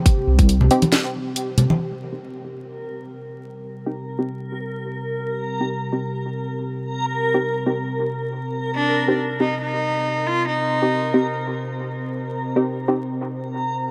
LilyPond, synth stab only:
\new Staff \with { instrumentName = "Synth stab" } { \time 4/4 \key c \minor \tempo 4 = 138 r4. <c' ees' g'>16 r2 r16 | r8. <c' ees' g'>8. <c' ees' g'>16 r2 r16 | r8. <c' ees' g'>8 r16 <c' ees' g'>16 r2 r16 | r8. <c' ees' g'>8. <c' ees' g'>16 r2 r16 |
r8. <c' ees' g'>8 r16 <c' ees' g'>16 r2 r16 | r8. <c' ees' g'>8. <c' ees' g'>16 r2 r16 | r8. <c' ees' g'>8 r16 <c' ees' g'>16 r2 r16 | r8. <c' ees' g'>8. <c' ees' g'>16 r2 r16 | }